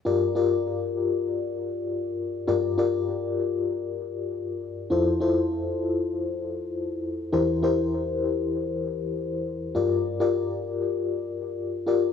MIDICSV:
0, 0, Header, 1, 2, 480
1, 0, Start_track
1, 0, Tempo, 500000
1, 11643, End_track
2, 0, Start_track
2, 0, Title_t, "FM electric piano"
2, 0, Program_c, 0, 5
2, 48, Note_on_c, 0, 65, 76
2, 53, Note_on_c, 0, 67, 72
2, 56, Note_on_c, 0, 43, 64
2, 56, Note_on_c, 0, 70, 70
2, 61, Note_on_c, 0, 74, 83
2, 241, Control_c, 0, 64, 127
2, 258, Note_off_c, 0, 65, 0
2, 260, Note_off_c, 0, 67, 0
2, 262, Note_off_c, 0, 70, 0
2, 264, Note_off_c, 0, 74, 0
2, 337, Note_on_c, 0, 65, 81
2, 342, Note_on_c, 0, 67, 70
2, 346, Note_on_c, 0, 70, 74
2, 349, Note_on_c, 0, 74, 84
2, 1168, Note_off_c, 0, 65, 0
2, 1170, Note_off_c, 0, 67, 0
2, 1172, Note_off_c, 0, 70, 0
2, 1174, Note_off_c, 0, 74, 0
2, 2344, Note_off_c, 0, 43, 0
2, 2375, Note_on_c, 0, 65, 72
2, 2379, Note_on_c, 0, 67, 70
2, 2380, Note_on_c, 0, 43, 66
2, 2381, Note_on_c, 0, 70, 72
2, 2385, Note_on_c, 0, 74, 83
2, 2585, Note_off_c, 0, 65, 0
2, 2587, Note_off_c, 0, 67, 0
2, 2588, Note_off_c, 0, 70, 0
2, 2589, Note_off_c, 0, 74, 0
2, 2666, Note_on_c, 0, 65, 77
2, 2671, Note_on_c, 0, 67, 71
2, 2672, Note_on_c, 0, 70, 74
2, 2678, Note_on_c, 0, 74, 88
2, 3496, Note_off_c, 0, 65, 0
2, 3498, Note_off_c, 0, 67, 0
2, 3499, Note_off_c, 0, 70, 0
2, 3502, Note_off_c, 0, 74, 0
2, 4669, Note_off_c, 0, 43, 0
2, 4705, Note_on_c, 0, 64, 73
2, 4710, Note_on_c, 0, 65, 69
2, 4712, Note_on_c, 0, 41, 70
2, 4713, Note_on_c, 0, 69, 69
2, 4718, Note_on_c, 0, 72, 85
2, 4720, Control_c, 0, 64, 0
2, 4859, Control_c, 0, 64, 127
2, 4913, Note_off_c, 0, 64, 0
2, 4916, Note_off_c, 0, 65, 0
2, 4917, Note_off_c, 0, 69, 0
2, 4920, Note_off_c, 0, 72, 0
2, 4995, Note_on_c, 0, 64, 80
2, 4999, Note_on_c, 0, 65, 74
2, 5004, Note_on_c, 0, 69, 73
2, 5007, Note_on_c, 0, 72, 87
2, 5824, Note_off_c, 0, 64, 0
2, 5826, Note_off_c, 0, 65, 0
2, 5829, Note_off_c, 0, 69, 0
2, 5830, Note_off_c, 0, 72, 0
2, 6999, Note_off_c, 0, 41, 0
2, 7032, Note_on_c, 0, 64, 78
2, 7037, Note_on_c, 0, 40, 66
2, 7037, Note_on_c, 0, 67, 71
2, 7038, Note_on_c, 0, 52, 65
2, 7038, Note_on_c, 0, 70, 72
2, 7044, Note_on_c, 0, 72, 87
2, 7049, Control_c, 0, 64, 0
2, 7216, Control_c, 0, 64, 127
2, 7240, Note_off_c, 0, 64, 0
2, 7243, Note_off_c, 0, 67, 0
2, 7243, Note_off_c, 0, 70, 0
2, 7246, Note_off_c, 0, 72, 0
2, 7321, Note_on_c, 0, 64, 84
2, 7325, Note_on_c, 0, 67, 72
2, 7330, Note_on_c, 0, 70, 73
2, 7333, Note_on_c, 0, 72, 93
2, 8151, Note_off_c, 0, 64, 0
2, 8153, Note_off_c, 0, 67, 0
2, 8155, Note_off_c, 0, 70, 0
2, 8157, Note_off_c, 0, 72, 0
2, 9325, Note_off_c, 0, 40, 0
2, 9326, Note_off_c, 0, 52, 0
2, 9357, Note_on_c, 0, 65, 74
2, 9361, Note_on_c, 0, 43, 66
2, 9361, Note_on_c, 0, 67, 66
2, 9366, Note_on_c, 0, 70, 68
2, 9368, Note_on_c, 0, 74, 80
2, 9377, Control_c, 0, 64, 0
2, 9513, Control_c, 0, 64, 127
2, 9670, Note_off_c, 0, 65, 0
2, 9672, Note_off_c, 0, 67, 0
2, 9674, Note_off_c, 0, 70, 0
2, 9675, Note_off_c, 0, 74, 0
2, 9792, Note_on_c, 0, 65, 74
2, 9796, Note_on_c, 0, 67, 70
2, 9799, Note_on_c, 0, 70, 68
2, 9805, Note_on_c, 0, 74, 84
2, 10622, Note_off_c, 0, 65, 0
2, 10624, Note_off_c, 0, 67, 0
2, 10626, Note_off_c, 0, 70, 0
2, 10629, Note_off_c, 0, 74, 0
2, 11392, Note_on_c, 0, 65, 69
2, 11397, Note_on_c, 0, 67, 69
2, 11399, Note_on_c, 0, 70, 68
2, 11405, Note_on_c, 0, 74, 80
2, 11602, Note_off_c, 0, 65, 0
2, 11605, Note_off_c, 0, 67, 0
2, 11606, Note_off_c, 0, 70, 0
2, 11609, Note_off_c, 0, 74, 0
2, 11643, Note_off_c, 0, 43, 0
2, 11643, End_track
0, 0, End_of_file